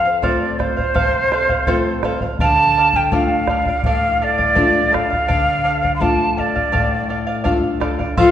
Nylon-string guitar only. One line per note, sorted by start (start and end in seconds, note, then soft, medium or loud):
0.00 0.20 F2 medium
0.22 0.80 A3 soft
0.22 0.81 C4 soft
0.22 0.81 F4 soft
0.94 1.65 C3 medium
1.67 2.25 A3 soft
1.67 2.25 C4 soft
1.67 2.26 F4 soft
2.40 3.10 D3 medium
3.11 3.70 A3 soft
3.11 3.70 D4 soft
3.11 3.70 F4 soft
3.84 4.54 A2 medium
4.56 5.14 A3 soft
4.56 5.15 D4 soft
4.56 5.15 F4 soft
5.28 5.99 D3 medium
6.00 6.58 A3 soft
6.00 6.59 D4 soft
6.00 6.59 F4 soft
6.72 7.43 A2 medium
7.44 8.02 A3 soft
7.44 8.03 D4 soft
7.44 8.03 F4 soft
8.18 8.31 F3 medium